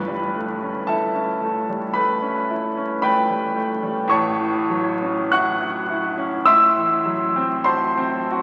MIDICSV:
0, 0, Header, 1, 2, 480
1, 0, Start_track
1, 0, Tempo, 1073345
1, 1830, Time_signature, 4, 2, 24, 8
1, 1831, Tempo, 1221996
1, 2311, Tempo, 1176471
1, 3271, Tempo, 1290323
1, 3551, End_track
2, 0, Start_track
2, 0, Title_t, "Grand piano"
2, 0, Program_c, 0, 0
2, 0, Control_c, 0, 64, 127
2, 0, Note_on_c, 0, 31, 63
2, 0, Note_on_c, 0, 43, 70
2, 0, Note_on_c, 0, 71, 65
2, 0, Note_on_c, 0, 83, 86
2, 35, Note_on_c, 0, 55, 49
2, 158, Note_on_c, 0, 57, 52
2, 230, Note_off_c, 0, 55, 0
2, 279, Note_on_c, 0, 61, 49
2, 352, Note_off_c, 0, 57, 0
2, 380, Note_off_c, 0, 71, 0
2, 389, Note_on_c, 0, 81, 83
2, 396, Note_on_c, 0, 64, 57
2, 396, Note_on_c, 0, 69, 66
2, 397, Note_off_c, 0, 83, 0
2, 398, Note_on_c, 0, 76, 62
2, 471, Note_off_c, 0, 61, 0
2, 512, Note_on_c, 0, 61, 49
2, 589, Note_off_c, 0, 64, 0
2, 634, Note_on_c, 0, 57, 48
2, 707, Note_off_c, 0, 61, 0
2, 756, Note_on_c, 0, 55, 51
2, 828, Note_off_c, 0, 57, 0
2, 860, Note_off_c, 0, 69, 0
2, 861, Note_off_c, 0, 76, 0
2, 865, Note_on_c, 0, 83, 98
2, 873, Note_on_c, 0, 57, 61
2, 873, Note_on_c, 0, 71, 69
2, 874, Note_off_c, 0, 81, 0
2, 951, Note_off_c, 0, 55, 0
2, 994, Note_on_c, 0, 61, 58
2, 1071, Note_off_c, 0, 57, 0
2, 1120, Note_on_c, 0, 64, 56
2, 1190, Note_off_c, 0, 61, 0
2, 1239, Note_on_c, 0, 61, 63
2, 1312, Note_off_c, 0, 64, 0
2, 1338, Note_off_c, 0, 71, 0
2, 1344, Note_off_c, 0, 83, 0
2, 1351, Note_on_c, 0, 83, 107
2, 1356, Note_on_c, 0, 57, 55
2, 1356, Note_on_c, 0, 79, 78
2, 1357, Note_on_c, 0, 71, 76
2, 1427, Note_off_c, 0, 61, 0
2, 1474, Note_on_c, 0, 55, 54
2, 1543, Note_off_c, 0, 57, 0
2, 1590, Note_on_c, 0, 57, 63
2, 1660, Note_off_c, 0, 55, 0
2, 1712, Note_on_c, 0, 55, 56
2, 1780, Note_off_c, 0, 57, 0
2, 1805, Note_off_c, 0, 43, 0
2, 1811, Note_off_c, 0, 31, 0
2, 1811, Note_off_c, 0, 71, 0
2, 1811, Note_off_c, 0, 79, 0
2, 1823, Note_on_c, 0, 45, 92
2, 1826, Note_off_c, 0, 83, 0
2, 1831, Note_on_c, 0, 85, 100
2, 1832, Note_off_c, 0, 55, 0
2, 1833, Note_on_c, 0, 33, 82
2, 1835, Note_on_c, 0, 73, 72
2, 1836, Note_on_c, 0, 81, 70
2, 1837, Control_c, 0, 64, 0
2, 1904, Control_c, 0, 64, 127
2, 1948, Note_on_c, 0, 52, 59
2, 2068, Note_on_c, 0, 54, 64
2, 2143, Note_off_c, 0, 52, 0
2, 2195, Note_on_c, 0, 61, 59
2, 2264, Note_off_c, 0, 54, 0
2, 2297, Note_off_c, 0, 73, 0
2, 2298, Note_off_c, 0, 81, 0
2, 2308, Note_off_c, 0, 85, 0
2, 2311, Note_on_c, 0, 90, 103
2, 2314, Note_on_c, 0, 85, 85
2, 2315, Note_on_c, 0, 78, 89
2, 2317, Note_on_c, 0, 64, 65
2, 2387, Note_off_c, 0, 61, 0
2, 2434, Note_on_c, 0, 66, 58
2, 2506, Note_off_c, 0, 64, 0
2, 2549, Note_on_c, 0, 64, 62
2, 2620, Note_off_c, 0, 66, 0
2, 2663, Note_on_c, 0, 61, 67
2, 2735, Note_off_c, 0, 64, 0
2, 2762, Note_off_c, 0, 45, 0
2, 2767, Note_off_c, 0, 33, 0
2, 2767, Note_off_c, 0, 78, 0
2, 2767, Note_off_c, 0, 85, 0
2, 2775, Note_on_c, 0, 88, 126
2, 2779, Note_on_c, 0, 84, 89
2, 2781, Note_off_c, 0, 61, 0
2, 2781, Note_on_c, 0, 76, 93
2, 2782, Note_off_c, 0, 90, 0
2, 2782, Note_on_c, 0, 45, 86
2, 2789, Control_c, 0, 64, 0
2, 2863, Control_c, 0, 64, 127
2, 2903, Note_on_c, 0, 52, 64
2, 3021, Note_on_c, 0, 54, 60
2, 3096, Note_off_c, 0, 52, 0
2, 3144, Note_on_c, 0, 60, 72
2, 3219, Note_off_c, 0, 54, 0
2, 3252, Note_off_c, 0, 84, 0
2, 3253, Note_off_c, 0, 76, 0
2, 3261, Note_on_c, 0, 84, 98
2, 3265, Note_on_c, 0, 72, 73
2, 3265, Note_on_c, 0, 81, 67
2, 3266, Note_off_c, 0, 88, 0
2, 3268, Note_on_c, 0, 66, 60
2, 3340, Note_off_c, 0, 60, 0
2, 3386, Note_on_c, 0, 60, 67
2, 3459, Note_off_c, 0, 66, 0
2, 3511, Note_on_c, 0, 66, 66
2, 3551, Note_off_c, 0, 45, 0
2, 3551, Note_off_c, 0, 60, 0
2, 3551, Note_off_c, 0, 66, 0
2, 3551, Note_off_c, 0, 72, 0
2, 3551, Note_off_c, 0, 81, 0
2, 3551, Note_off_c, 0, 84, 0
2, 3551, End_track
0, 0, End_of_file